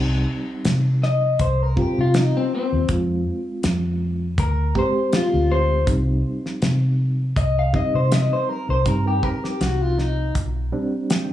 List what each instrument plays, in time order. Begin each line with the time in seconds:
Already playing: fingered electric bass C2, reed electric piano G3 C4 D#4
0.65 fingered electric bass C3, snare, closed hi-hat
1.03 clean electric guitar D#5, snare
1.39 fingered electric bass C2, clean electric guitar C5, kick, closed hi-hat
1.62 clean electric guitar A#4
1.76 reed electric piano G3 C4 F4, clean electric guitar G4, kick
1.98 fingered electric bass C3, clean electric guitar F4
2.14 clean electric guitar D#4, snare, closed hi-hat
2.37 clean electric guitar C4
2.55 clean electric guitar C4
2.73 fingered electric bass D#2
2.89 fingered electric bass F2, reed electric piano G#3 C4 F4, kick, closed hi-hat
3.63 fingered electric bass F2, snare, closed hi-hat
4.38 fingered electric bass D2, clean electric guitar A#4, kick, closed hi-hat
4.75 reed electric piano G#3 C4 G4, clean electric guitar C5, kick
5.13 clean electric guitar F4, snare, closed hi-hat
5.34 fingered electric bass D2
5.52 clean electric guitar C5
5.87 fingered electric bass C2, reed electric piano G3 C4 D#4, kick, closed hi-hat
6.46 snare
6.62 fingered electric bass C3, snare, closed hi-hat
7.36 fingered electric bass C2, clean electric guitar D#5, kick, closed hi-hat
7.59 clean electric guitar F5
7.73 reed electric piano G3 C4 D#4, clean electric guitar D#5, kick
7.94 fingered electric bass C3, clean electric guitar C5
8.12 clean electric guitar D#5, snare, closed hi-hat
8.33 clean electric guitar C5
8.49 clean electric guitar A#4
8.69 fingered electric bass C2, clean electric guitar C5
8.86 fingered electric bass G2, reed electric piano G3 C4 D#4, clean electric guitar A#4, kick, closed hi-hat
9.07 clean electric guitar G4
9.23 clean electric guitar A#4, kick
9.44 clean electric guitar G4, snare
9.61 fingered electric bass C2, clean electric guitar F#4, snare, closed hi-hat
9.82 clean electric guitar F4
9.98 clean electric guitar D#4, snare
10.35 fingered electric bass B1, kick, closed hi-hat
10.72 reed electric piano G3 C4 D4
11.10 reed electric piano G5, snare, closed hi-hat